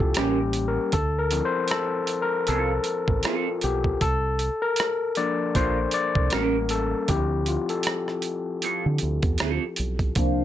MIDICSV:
0, 0, Header, 1, 6, 480
1, 0, Start_track
1, 0, Key_signature, -1, "minor"
1, 0, Tempo, 769231
1, 581, Time_signature, 4, 2, 24, 8
1, 6518, End_track
2, 0, Start_track
2, 0, Title_t, "Flute section"
2, 0, Program_c, 0, 73
2, 6346, Note_on_c, 0, 62, 73
2, 6347, Note_on_c, 0, 77, 81
2, 6349, Note_on_c, 0, 70, 65
2, 6349, Note_on_c, 0, 72, 64
2, 6518, Note_off_c, 0, 62, 0
2, 6518, Note_off_c, 0, 70, 0
2, 6518, Note_off_c, 0, 72, 0
2, 6518, Note_off_c, 0, 77, 0
2, 6518, End_track
3, 0, Start_track
3, 0, Title_t, "Clean electric guitar"
3, 0, Program_c, 1, 27
3, 109, Note_on_c, 1, 61, 77
3, 114, Note_on_c, 1, 67, 77
3, 116, Note_on_c, 1, 70, 80
3, 233, Note_off_c, 1, 61, 0
3, 236, Note_off_c, 1, 67, 0
3, 237, Note_off_c, 1, 70, 0
3, 1550, Note_on_c, 1, 60, 75
3, 1556, Note_on_c, 1, 65, 81
3, 1556, Note_on_c, 1, 69, 79
3, 1686, Note_off_c, 1, 60, 0
3, 1689, Note_off_c, 1, 65, 0
3, 1689, Note_off_c, 1, 69, 0
3, 2029, Note_on_c, 1, 60, 76
3, 2033, Note_on_c, 1, 65, 78
3, 2038, Note_on_c, 1, 69, 88
3, 2166, Note_off_c, 1, 60, 0
3, 2168, Note_off_c, 1, 65, 0
3, 2170, Note_off_c, 1, 69, 0
3, 3470, Note_on_c, 1, 62, 70
3, 3473, Note_on_c, 1, 65, 83
3, 3476, Note_on_c, 1, 70, 76
3, 3594, Note_off_c, 1, 62, 0
3, 3596, Note_off_c, 1, 65, 0
3, 3597, Note_off_c, 1, 70, 0
3, 3951, Note_on_c, 1, 61, 78
3, 3955, Note_on_c, 1, 67, 73
3, 3958, Note_on_c, 1, 70, 88
3, 4087, Note_off_c, 1, 61, 0
3, 4089, Note_off_c, 1, 67, 0
3, 4090, Note_off_c, 1, 70, 0
3, 5388, Note_on_c, 1, 60, 69
3, 5393, Note_on_c, 1, 65, 71
3, 5395, Note_on_c, 1, 69, 83
3, 5513, Note_off_c, 1, 60, 0
3, 5515, Note_off_c, 1, 65, 0
3, 5517, Note_off_c, 1, 69, 0
3, 5869, Note_on_c, 1, 60, 84
3, 5873, Note_on_c, 1, 65, 79
3, 5877, Note_on_c, 1, 69, 78
3, 6006, Note_off_c, 1, 60, 0
3, 6008, Note_off_c, 1, 65, 0
3, 6010, Note_off_c, 1, 69, 0
3, 6518, End_track
4, 0, Start_track
4, 0, Title_t, "Tine electric piano"
4, 0, Program_c, 2, 4
4, 0, Control_c, 2, 64, 127
4, 0, Note_on_c, 2, 53, 51
4, 0, Note_on_c, 2, 58, 45
4, 0, Note_on_c, 2, 62, 57
4, 0, Note_on_c, 2, 64, 69
4, 0, Note_on_c, 2, 65, 70
4, 0, Note_on_c, 2, 67, 77
4, 0, Note_on_c, 2, 69, 76
4, 77, Note_off_c, 2, 53, 0
4, 79, Note_off_c, 2, 58, 0
4, 80, Note_off_c, 2, 62, 0
4, 104, Note_on_c, 2, 55, 51
4, 108, Control_c, 2, 64, 0
4, 108, Note_on_c, 2, 58, 49
4, 109, Note_off_c, 2, 65, 0
4, 110, Note_off_c, 2, 67, 0
4, 110, Note_off_c, 2, 69, 0
4, 110, Note_on_c, 2, 61, 57
4, 111, Note_on_c, 2, 67, 78
4, 113, Note_off_c, 2, 64, 0
4, 226, Control_c, 2, 64, 127
4, 424, Note_on_c, 2, 70, 85
4, 436, Note_off_c, 2, 67, 0
4, 558, Note_off_c, 2, 55, 0
4, 561, Note_off_c, 2, 58, 0
4, 562, Note_off_c, 2, 61, 0
4, 583, Note_on_c, 2, 69, 93
4, 587, Note_off_c, 2, 70, 0
4, 588, Control_c, 2, 64, 0
4, 705, Control_c, 2, 64, 127
4, 741, Note_on_c, 2, 70, 88
4, 747, Note_off_c, 2, 69, 0
4, 821, Note_on_c, 2, 53, 50
4, 824, Note_on_c, 2, 60, 46
4, 828, Note_on_c, 2, 64, 55
4, 906, Note_off_c, 2, 70, 0
4, 906, Note_on_c, 2, 72, 89
4, 1065, Note_on_c, 2, 69, 86
4, 1068, Note_off_c, 2, 72, 0
4, 1153, Note_off_c, 2, 53, 0
4, 1154, Note_off_c, 2, 60, 0
4, 1156, Note_off_c, 2, 64, 0
4, 1386, Note_on_c, 2, 70, 85
4, 1393, Note_off_c, 2, 69, 0
4, 1547, Note_on_c, 2, 69, 81
4, 1549, Note_off_c, 2, 70, 0
4, 1767, Note_off_c, 2, 69, 0
4, 2026, Note_on_c, 2, 65, 75
4, 2270, Note_on_c, 2, 67, 85
4, 2271, Note_off_c, 2, 65, 0
4, 2506, Note_on_c, 2, 69, 99
4, 2510, Control_c, 2, 64, 0
4, 2513, Note_off_c, 2, 67, 0
4, 2610, Control_c, 2, 64, 127
4, 2883, Note_on_c, 2, 70, 98
4, 2891, Note_off_c, 2, 69, 0
4, 3200, Note_off_c, 2, 70, 0
4, 3225, Note_on_c, 2, 53, 51
4, 3227, Note_on_c, 2, 58, 49
4, 3228, Note_on_c, 2, 74, 99
4, 3232, Note_on_c, 2, 62, 60
4, 3469, Note_on_c, 2, 72, 88
4, 3472, Note_off_c, 2, 74, 0
4, 3555, Note_off_c, 2, 53, 0
4, 3556, Note_off_c, 2, 58, 0
4, 3559, Note_off_c, 2, 62, 0
4, 3689, Note_off_c, 2, 72, 0
4, 3707, Note_on_c, 2, 74, 87
4, 3928, Note_off_c, 2, 74, 0
4, 3942, Note_on_c, 2, 55, 48
4, 3947, Note_on_c, 2, 58, 49
4, 3947, Note_on_c, 2, 70, 86
4, 3950, Control_c, 2, 64, 0
4, 3950, Note_on_c, 2, 61, 58
4, 4069, Control_c, 2, 64, 127
4, 4185, Note_on_c, 2, 69, 95
4, 4191, Note_off_c, 2, 70, 0
4, 4398, Note_off_c, 2, 55, 0
4, 4400, Note_off_c, 2, 58, 0
4, 4402, Note_off_c, 2, 61, 0
4, 4421, Note_on_c, 2, 53, 55
4, 4425, Note_on_c, 2, 67, 86
4, 4426, Note_on_c, 2, 60, 49
4, 4429, Control_c, 2, 64, 0
4, 4429, Note_on_c, 2, 64, 60
4, 4430, Note_off_c, 2, 69, 0
4, 4534, Control_c, 2, 64, 127
4, 4669, Note_on_c, 2, 65, 69
4, 4670, Note_off_c, 2, 67, 0
4, 4753, Note_off_c, 2, 53, 0
4, 4755, Note_off_c, 2, 60, 0
4, 4757, Note_off_c, 2, 64, 0
4, 4792, Note_off_c, 2, 65, 0
4, 4804, Note_on_c, 2, 69, 77
4, 5496, Note_off_c, 2, 69, 0
4, 6343, Note_on_c, 2, 53, 52
4, 6346, Note_on_c, 2, 58, 50
4, 6349, Control_c, 2, 64, 0
4, 6349, Note_on_c, 2, 62, 56
4, 6465, Control_c, 2, 64, 127
4, 6518, Note_off_c, 2, 53, 0
4, 6518, Note_off_c, 2, 58, 0
4, 6518, Note_off_c, 2, 62, 0
4, 6518, End_track
5, 0, Start_track
5, 0, Title_t, "Fingered electric bass"
5, 0, Program_c, 3, 33
5, 5, Note_on_c, 3, 36, 81
5, 83, Note_off_c, 3, 36, 0
5, 113, Note_on_c, 3, 33, 92
5, 483, Note_off_c, 3, 33, 0
5, 585, Note_on_c, 3, 38, 83
5, 878, Note_off_c, 3, 38, 0
5, 1552, Note_on_c, 3, 36, 81
5, 1735, Note_off_c, 3, 36, 0
5, 1927, Note_on_c, 3, 33, 83
5, 2004, Note_off_c, 3, 33, 0
5, 2270, Note_on_c, 3, 35, 93
5, 2454, Note_off_c, 3, 35, 0
5, 2509, Note_on_c, 3, 36, 93
5, 2800, Note_off_c, 3, 36, 0
5, 3470, Note_on_c, 3, 34, 85
5, 3654, Note_off_c, 3, 34, 0
5, 3846, Note_on_c, 3, 36, 87
5, 3923, Note_off_c, 3, 36, 0
5, 3954, Note_on_c, 3, 33, 90
5, 4324, Note_off_c, 3, 33, 0
5, 4428, Note_on_c, 3, 38, 104
5, 4719, Note_off_c, 3, 38, 0
5, 5528, Note_on_c, 3, 50, 83
5, 5605, Note_off_c, 3, 50, 0
5, 5633, Note_on_c, 3, 38, 80
5, 5735, Note_off_c, 3, 38, 0
5, 5766, Note_on_c, 3, 40, 84
5, 5843, Note_off_c, 3, 40, 0
5, 5874, Note_on_c, 3, 38, 83
5, 5976, Note_off_c, 3, 38, 0
5, 6112, Note_on_c, 3, 35, 74
5, 6295, Note_off_c, 3, 35, 0
5, 6346, Note_on_c, 3, 36, 86
5, 6518, Note_off_c, 3, 36, 0
5, 6518, End_track
6, 0, Start_track
6, 0, Title_t, "Drums"
6, 0, Note_on_c, 9, 36, 85
6, 61, Note_off_c, 9, 36, 0
6, 90, Note_on_c, 9, 42, 83
6, 105, Note_on_c, 9, 37, 97
6, 152, Note_off_c, 9, 42, 0
6, 167, Note_off_c, 9, 37, 0
6, 332, Note_on_c, 9, 42, 81
6, 394, Note_off_c, 9, 42, 0
6, 575, Note_on_c, 9, 42, 81
6, 580, Note_on_c, 9, 36, 94
6, 638, Note_off_c, 9, 42, 0
6, 643, Note_off_c, 9, 36, 0
6, 815, Note_on_c, 9, 42, 75
6, 878, Note_off_c, 9, 42, 0
6, 1046, Note_on_c, 9, 42, 79
6, 1070, Note_on_c, 9, 37, 95
6, 1109, Note_off_c, 9, 42, 0
6, 1132, Note_off_c, 9, 37, 0
6, 1292, Note_on_c, 9, 42, 64
6, 1355, Note_off_c, 9, 42, 0
6, 1540, Note_on_c, 9, 42, 76
6, 1602, Note_off_c, 9, 42, 0
6, 1771, Note_on_c, 9, 42, 65
6, 1833, Note_off_c, 9, 42, 0
6, 1920, Note_on_c, 9, 36, 88
6, 1983, Note_off_c, 9, 36, 0
6, 2014, Note_on_c, 9, 42, 82
6, 2029, Note_on_c, 9, 37, 97
6, 2077, Note_off_c, 9, 42, 0
6, 2091, Note_off_c, 9, 37, 0
6, 2255, Note_on_c, 9, 42, 73
6, 2318, Note_off_c, 9, 42, 0
6, 2398, Note_on_c, 9, 36, 76
6, 2461, Note_off_c, 9, 36, 0
6, 2502, Note_on_c, 9, 42, 72
6, 2503, Note_on_c, 9, 36, 92
6, 2564, Note_off_c, 9, 42, 0
6, 2566, Note_off_c, 9, 36, 0
6, 2740, Note_on_c, 9, 42, 70
6, 2802, Note_off_c, 9, 42, 0
6, 2971, Note_on_c, 9, 42, 82
6, 2995, Note_on_c, 9, 37, 95
6, 3034, Note_off_c, 9, 42, 0
6, 3057, Note_off_c, 9, 37, 0
6, 3215, Note_on_c, 9, 42, 61
6, 3277, Note_off_c, 9, 42, 0
6, 3463, Note_on_c, 9, 42, 69
6, 3464, Note_on_c, 9, 36, 85
6, 3525, Note_off_c, 9, 42, 0
6, 3526, Note_off_c, 9, 36, 0
6, 3690, Note_on_c, 9, 42, 66
6, 3752, Note_off_c, 9, 42, 0
6, 3840, Note_on_c, 9, 36, 94
6, 3902, Note_off_c, 9, 36, 0
6, 3933, Note_on_c, 9, 42, 77
6, 3948, Note_on_c, 9, 37, 102
6, 3995, Note_off_c, 9, 42, 0
6, 4010, Note_off_c, 9, 37, 0
6, 4174, Note_on_c, 9, 42, 74
6, 4237, Note_off_c, 9, 42, 0
6, 4418, Note_on_c, 9, 42, 83
6, 4421, Note_on_c, 9, 36, 101
6, 4481, Note_off_c, 9, 42, 0
6, 4484, Note_off_c, 9, 36, 0
6, 4656, Note_on_c, 9, 42, 75
6, 4718, Note_off_c, 9, 42, 0
6, 4799, Note_on_c, 9, 42, 36
6, 4862, Note_off_c, 9, 42, 0
6, 4887, Note_on_c, 9, 42, 83
6, 4910, Note_on_c, 9, 37, 96
6, 4949, Note_off_c, 9, 42, 0
6, 4972, Note_off_c, 9, 37, 0
6, 5042, Note_on_c, 9, 37, 31
6, 5104, Note_off_c, 9, 37, 0
6, 5130, Note_on_c, 9, 42, 68
6, 5192, Note_off_c, 9, 42, 0
6, 5379, Note_on_c, 9, 42, 69
6, 5441, Note_off_c, 9, 42, 0
6, 5606, Note_on_c, 9, 42, 63
6, 5669, Note_off_c, 9, 42, 0
6, 5756, Note_on_c, 9, 42, 36
6, 5759, Note_on_c, 9, 36, 95
6, 5819, Note_off_c, 9, 42, 0
6, 5821, Note_off_c, 9, 36, 0
6, 5852, Note_on_c, 9, 42, 81
6, 5867, Note_on_c, 9, 37, 101
6, 5915, Note_off_c, 9, 42, 0
6, 5929, Note_off_c, 9, 37, 0
6, 6092, Note_on_c, 9, 42, 83
6, 6155, Note_off_c, 9, 42, 0
6, 6235, Note_on_c, 9, 36, 78
6, 6235, Note_on_c, 9, 42, 28
6, 6297, Note_off_c, 9, 42, 0
6, 6298, Note_off_c, 9, 36, 0
6, 6336, Note_on_c, 9, 42, 78
6, 6340, Note_on_c, 9, 36, 102
6, 6398, Note_off_c, 9, 42, 0
6, 6402, Note_off_c, 9, 36, 0
6, 6518, End_track
0, 0, End_of_file